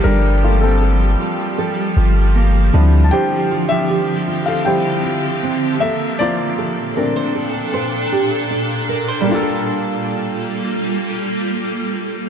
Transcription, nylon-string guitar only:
X:1
M:4/4
L:1/16
Q:1/4=78
K:Gdor
V:1 name="Nylon-string guitar"
[G,B,FA]2 F2 A2 F2 A2 F2 B,2 D,2 | [D,G]2 F2 G2 F2 G2 F2 C2 B,2 | [B,c]2 A2 B c A2 c2 G A D2 B c | [G,B,FA]16 |]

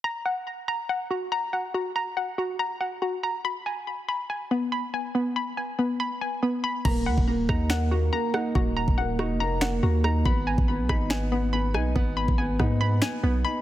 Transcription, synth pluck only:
X:1
M:4/4
L:1/8
Q:1/4=141
K:Ebm
V:1 name="Synth pluck"
b g2 b g G b g | G b g G b g G b | c' a2 c' a C c' a | C c' a C c' a C c' |
b g2 b g G b g | G b g G b g G b | c' a2 c' a C c' a | C c' a C c' a C c' |]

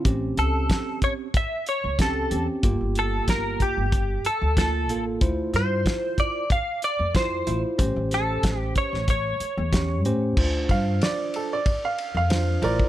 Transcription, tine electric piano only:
X:1
M:4/4
L:1/8
Q:"Swing 16ths" 1/4=93
K:Dm
V:1 name="Tine electric piano"
[^B,^CG]4 z2 [B,CG] [B,CG] | [B,FG]4 z2 [B,FA] [B,FA] | [EFc]4 z2 [EFc] [EFc] | [^CG^B]4 z2 [CG^c] [CGB] |
[DFc]4 z2 [DFc] [EFc] |]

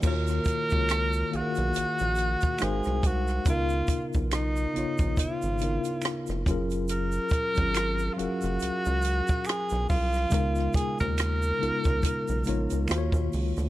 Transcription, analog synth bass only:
X:1
M:4/4
L:1/16
Q:"Swing 16ths" 1/4=70
K:Ebm
V:1 name="Analog synth bass" clef=bass
E,,2 z D,,3 C,, C,, B,,, B,,,2 z A,,, =C,, C,,2 | D,,2 z C,,3 B,,, B,,, A,,, A,,,2 z2 G,,, G,,,2- | G,,,2 z A,,,3 G,,, G,,, D,, D,,2 z2 C,, =C,,2 | D,,2 z E,,3 D,, D,, z C,, B,,, D,, E,, E,, D,, =D,, |]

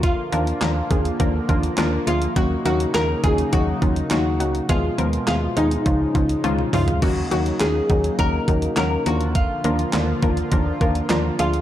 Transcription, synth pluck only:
X:1
M:4/4
L:1/8
Q:1/4=103
K:Ebm
V:1 name="Synth pluck"
[F,B,=DFB] [F,B,DFB] [F,B,DFB] [F,B,DFA] [F,B,DFB] [F,B,DFB] [F,B,DFB] [F,B,DFA] | [G,B,DEG] [G,B,DEG] [G,B,DEG] [G,B,DEF] [G,B,DEG] [G,B,DEF] [G,B,DEF] [G,B,DEG] | [F,A,CFA] [F,A,CFB] [F,A,CFA] [F,A,CFA] [F,A,DEF] [F,A,DEF] [F,A,DEF] [F,A,DEF] | [G,B,DEG] [G,B,DEG] [G,B,DEF] [G,B,DEG] [G,B,DEG] [G,B,DEG] [G,B,DEG] [F,B,=DFB]- |
[F,B,=DFB] [F,B,DFB] [F,B,DFB] [F,B,DFB] [F,B,DFB] [F,B,DFB] [F,B,DFB] [F,B,DFA] |]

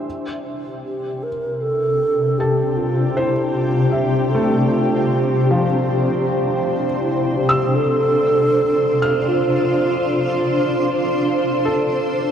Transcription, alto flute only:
X:1
M:4/4
L:1/8
Q:1/4=78
K:Ddor
V:1 name="Alto flute"
z2 G _B A2 G F | E F G A F3 z | z2 E G A4 | F3 z4 z |]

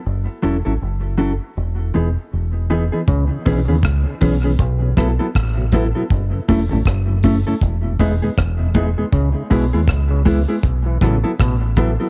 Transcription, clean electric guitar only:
X:1
M:4/4
L:1/16
Q:"Swing 16ths" 1/4=79
K:C#m
V:1 name="Clean electric guitar"
z2 [F,CEA] [F,CEA] z2 [F,CEA] z3 [E,B,DG] z3 [E,B,DG] [E,B,DG] | z2 [E,B,CG] [E,B,CG] z2 [E,B,CG] [E,B,CG] z2 [F,B,EA] [F,B,EA] z2 [F,B,EA] [F,B,EA] | z2 [A,CEA] [A,CEA] z2 [A,CEA] [A,CEA] z2 [G,B,DG] [G,B,DG] z2 [G,B,DG] [G,B,DG] | z2 [G,B,EG] [G,B,EG] z2 [G,B,EG] [G,B,EG] z2 [F,B,EA] [F,B,EA] z2 [F,B,EA] [F,B,EA] |]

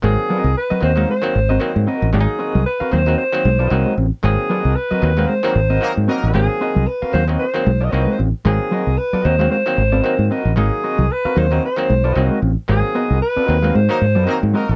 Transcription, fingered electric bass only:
X:1
M:4/4
L:1/16
Q:"Swing 16ths" 1/4=114
K:Abmix
V:1 name="Fingered electric bass" clef=bass
A,,, z2 C,, z2 E,,2 z2 A,,,2 z A,, z =A,,, | A,,, z2 C,, z2 E,,2 z2 _C,,2 =C,, z =A,,, z | A,,, z2 C,, z2 E,,2 z2 A,,,2 z A,, z =A,,, | A,,, z2 C,, z2 E,,2 z2 _C,,2 =C,, z =A,,, z |
A,,, z2 C,, z2 E,,2 z2 A,,,2 z A,, z =A,,, | A,,, z2 C,, z2 E,,2 z2 _C,,2 =C,, z =A,,, z | A,,, z2 C,, z2 E,,2 A,, z A,, G,, z A,, z =A,,, |]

